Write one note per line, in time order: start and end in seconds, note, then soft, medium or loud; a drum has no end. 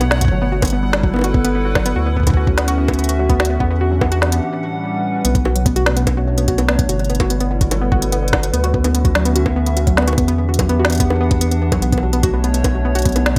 0.00 0.30 B1 medium
0.00 0.32 B2 medium
0.00 0.32 A3 medium
0.00 0.10 B3 loud
0.00 0.97 D4 medium
0.00 0.97 C#5 medium
0.00 4.43 F#5 medium
0.00 closed hi-hat soft
0.00 high bongo soft
0.11 0.20 B3 medium
0.11 snare loud
0.21 0.30 F#4 medium
0.21 kick medium
0.21 closed hi-hat medium
0.25 kick medium
0.28 1.94 G1 medium
0.28 0.41 F#3 medium
0.28 1.96 G3 medium
0.28 kick medium
0.42 0.52 B3 loud
0.50 0.61 F#4 loud
0.50 2.62 A4 medium
0.54 2.62 E4 medium
0.62 0.71 B3 medium
0.62 kick loud
0.62 closed hi-hat medium
0.62 high bongo medium
0.65 closed hi-hat soft
0.67 closed hi-hat soft
0.70 0.82 B3 medium
0.70 closed hi-hat soft
0.80 0.92 B3 medium
0.80 2.62 B4 medium
0.93 1.02 F#4 medium
0.93 snare loud
1.03 1.13 F#3 medium
1.03 kick loud
1.14 1.23 B3 loud
1.14 high bongo soft
1.16 high bongo soft
1.19 high bongo soft
1.21 1.33 F#4 loud
1.21 closed hi-hat soft
1.21 high bongo soft
1.34 1.43 B3 medium
1.34 kick loud
1.45 1.53 B3 loud
1.45 closed hi-hat medium
1.55 1.64 B3 medium
1.65 1.74 F#4 medium
1.75 1.85 F#3 medium
1.75 kick loud
1.75 snare loud
1.75 high bongo medium
1.86 1.95 B3 loud
1.86 closed hi-hat medium
1.96 3.58 D2 medium
1.96 3.60 D3 medium
1.96 3.60 C#4 medium
1.96 2.05 F#4 loud
2.06 2.15 B3 medium
2.16 2.25 B3 loud
2.16 kick soft
2.20 kick soft
2.23 2.36 B3 medium
2.23 3.60 F#4 medium
2.23 kick medium
2.27 kick medium
2.27 closed hi-hat medium
2.27 high bongo soft
2.30 kick medium
2.34 2.46 F#4 medium
2.34 kick medium
2.47 2.57 F#3 medium
2.47 kick loud
2.58 2.67 B3 loud
2.58 3.93 E5 medium
2.58 snare loud
2.58 closed hi-hat medium
2.68 2.77 F#4 loud
2.68 closed hi-hat medium
2.78 2.87 B3 medium
2.88 2.97 B3 loud
2.88 kick loud
2.88 closed hi-hat soft
2.88 high bongo medium
2.94 closed hi-hat soft
2.99 3.08 B3 medium
2.99 closed hi-hat soft
3.04 closed hi-hat soft
3.09 3.18 F#4 medium
3.09 closed hi-hat medium
3.19 3.29 F#3 medium
3.29 3.39 B3 loud
3.29 kick loud
3.29 closed hi-hat soft
3.40 3.49 F#4 loud
3.40 snare loud
3.40 high bongo medium
3.45 closed hi-hat medium
3.50 3.59 B3 medium
3.60 4.40 E2 medium
3.60 4.42 E3 medium
3.60 3.69 B3 loud
3.60 kick loud
3.71 3.80 B3 medium
3.81 3.90 F#4 medium
3.81 4.75 G4 medium
3.91 4.01 F#3 medium
3.97 5.90 F#5 medium
4.01 4.11 B3 loud
4.01 kick loud
4.01 high bongo medium
4.12 4.21 F#4 loud
4.12 closed hi-hat medium
4.22 4.31 B3 medium
4.22 snare loud
4.32 4.41 B3 medium
4.32 closed hi-hat medium
4.42 5.25 A2 medium
4.42 5.25 G3 medium
4.79 5.90 B4 medium
5.25 6.87 B1 medium
5.25 6.89 B2 medium
5.25 5.34 B3 loud
5.25 closed hi-hat medium
5.35 5.44 B3 medium
5.35 kick loud
5.35 closed hi-hat soft
5.45 5.54 F#4 medium
5.45 high bongo medium
5.51 6.89 A3 medium
5.56 5.65 F#3 medium
5.56 closed hi-hat medium
5.66 5.76 B3 loud
5.66 kick loud
5.66 closed hi-hat medium
5.73 5.85 F#4 loud
5.73 7.55 C#5 medium
5.73 closed hi-hat soft
5.81 7.55 D4 medium
5.86 5.95 B3 medium
5.86 snare loud
5.97 6.06 B3 loud
5.97 closed hi-hat medium
6.07 6.16 B3 medium
6.07 kick loud
6.07 closed hi-hat medium
6.07 high bongo medium
6.17 6.26 F#4 medium
6.27 6.37 F#3 medium
6.38 6.47 B3 loud
6.38 closed hi-hat medium
6.48 6.57 F#4 loud
6.48 kick loud
6.48 closed hi-hat medium
6.58 6.67 B3 medium
6.58 closed hi-hat soft
6.58 high bongo medium
6.68 6.77 B3 loud
6.68 snare loud
6.79 6.88 B3 medium
6.79 kick loud
6.79 closed hi-hat medium
6.89 8.51 G1 medium
6.89 8.53 G3 medium
6.89 6.98 F#4 medium
6.89 closed hi-hat medium
6.99 7.09 F#3 medium
6.99 closed hi-hat soft
7.04 9.19 E4 medium
7.04 closed hi-hat soft
7.10 7.19 B3 loud
7.10 closed hi-hat soft
7.15 closed hi-hat soft
7.20 7.29 F#4 loud
7.20 kick loud
7.20 closed hi-hat medium
7.20 high bongo medium
7.28 7.39 B3 medium
7.28 9.19 A4 medium
7.28 closed hi-hat medium
7.40 7.49 B3 loud
7.40 closed hi-hat soft
7.51 7.60 B3 medium
7.61 7.70 F#4 medium
7.61 9.19 B4 medium
7.61 kick loud
7.61 closed hi-hat medium
7.71 7.81 F#3 medium
7.71 closed hi-hat medium
7.71 high bongo medium
7.82 7.91 B3 loud
7.92 8.01 F#4 loud
7.92 kick loud
8.02 8.11 B3 medium
8.02 closed hi-hat medium
8.12 8.21 B3 loud
8.12 closed hi-hat medium
8.23 8.32 B3 medium
8.28 closed hi-hat soft
8.33 8.42 F#4 medium
8.33 kick loud
8.33 snare loud
8.33 high bongo medium
8.43 8.53 F#3 medium
8.43 closed hi-hat medium
8.53 10.16 D2 medium
8.53 10.18 D3 medium
8.53 8.63 B3 loud
8.53 closed hi-hat medium
8.61 10.18 C#4 medium
8.61 10.18 F#4 medium
8.61 8.73 F#4 loud
8.61 closed hi-hat soft
8.74 8.83 B3 medium
8.74 kick loud
8.84 8.93 B3 loud
8.84 closed hi-hat medium
8.84 high bongo soft
8.94 9.03 B3 medium
8.94 closed hi-hat medium
9.02 9.14 F#4 medium
9.02 10.84 E5 medium
9.02 kick loud
9.02 closed hi-hat soft
9.15 9.25 F#3 medium
9.15 snare loud
9.25 9.35 B3 loud
9.25 closed hi-hat medium
9.36 9.45 F#4 loud
9.36 closed hi-hat medium
9.46 9.55 B3 medium
9.46 kick loud
9.46 high bongo medium
9.56 9.65 B3 loud
9.66 9.75 B3 medium
9.66 closed hi-hat medium
9.77 9.86 F#4 medium
9.77 closed hi-hat medium
9.87 9.97 F#3 medium
9.87 kick loud
9.87 closed hi-hat soft
9.97 10.07 B3 loud
9.97 snare loud
9.97 high bongo soft
10.02 high bongo soft
10.07 10.16 F#4 loud
10.07 closed hi-hat medium
10.07 high bongo soft
10.13 high bongo soft
10.18 11.80 E2 medium
10.18 11.82 E3 medium
10.18 10.27 B3 medium
10.18 kick loud
10.18 closed hi-hat medium
10.28 10.37 B3 loud
10.28 11.82 G4 medium
10.28 closed hi-hat soft
10.38 10.47 B3 medium
10.43 13.39 D4 medium
10.49 10.58 F#4 medium
10.53 12.48 F#5 medium
10.53 closed hi-hat soft
10.59 10.69 F#3 medium
10.59 kick loud
10.59 closed hi-hat medium
10.59 high bongo medium
10.69 10.79 B3 loud
10.69 closed hi-hat soft
10.79 10.88 F#4 loud
10.85 snare loud
10.90 10.99 B3 medium
10.90 closed hi-hat soft
10.92 closed hi-hat soft
10.95 closed hi-hat soft
10.98 11.09 B3 loud
10.98 kick loud
10.98 closed hi-hat soft
11.00 closed hi-hat medium
11.10 11.19 B3 medium
11.10 high bongo medium
11.21 11.30 B3 loud
11.31 11.40 B3 medium
11.31 kick loud
11.31 closed hi-hat soft
11.41 11.47 B3 medium
11.41 closed hi-hat medium
11.51 11.60 B3 medium
11.51 closed hi-hat soft
11.62 11.71 B3 medium
11.72 11.77 F#3 loud
11.72 kick loud
11.72 closed hi-hat medium
11.72 high bongo medium
11.82 13.39 B1 medium
11.82 13.39 B2 medium
11.82 11.91 B3 medium
11.82 closed hi-hat medium
11.92 11.98 B3 medium
11.92 kick loud
11.92 closed hi-hat soft
11.98 13.39 A3 medium
11.98 high bongo soft
12.03 12.13 F#3 medium
12.13 12.23 B3 loud
12.13 13.39 C#5 medium
12.13 closed hi-hat soft
12.23 12.32 F#4 loud
12.23 kick loud
12.23 closed hi-hat medium
12.34 12.43 B3 medium
12.44 12.53 B3 loud
12.44 closed hi-hat soft
12.54 12.63 B3 medium
12.54 closed hi-hat medium
12.64 12.70 B3 medium
12.64 kick loud
12.64 closed hi-hat medium
12.64 high bongo medium
12.75 12.84 F#3 medium
12.85 12.95 B3 loud
12.95 13.04 F#4 loud
12.95 closed hi-hat soft
12.99 closed hi-hat soft
13.02 13.14 B3 medium
13.02 closed hi-hat soft
13.05 kick loud
13.05 closed hi-hat medium
13.09 closed hi-hat soft
13.12 13.25 B3 loud
13.12 closed hi-hat soft
13.16 closed hi-hat soft
13.16 high bongo soft
13.26 13.35 B3 medium
13.26 snare loud